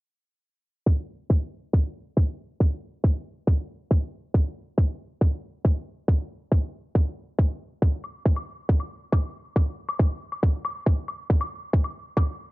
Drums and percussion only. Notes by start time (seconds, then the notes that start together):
0.86 kick
1.30 kick
1.73 kick
2.17 kick
2.60 kick
3.04 kick
3.47 kick
3.91 kick
4.34 kick
4.78 kick
5.21 kick
5.65 kick
6.08 kick
6.52 kick
6.95 kick
7.39 kick
7.82 kick
8.04 high woodblock
8.26 kick
8.36 high woodblock
8.69 kick
8.80 high woodblock
9.12 kick, high woodblock
9.56 kick, high woodblock
9.89 high woodblock
9.99 kick
10.32 high woodblock
10.43 kick
10.65 high woodblock
10.86 kick
11.08 high woodblock
11.30 kick
11.41 high woodblock
11.73 kick
11.84 high woodblock
12.17 kick, high woodblock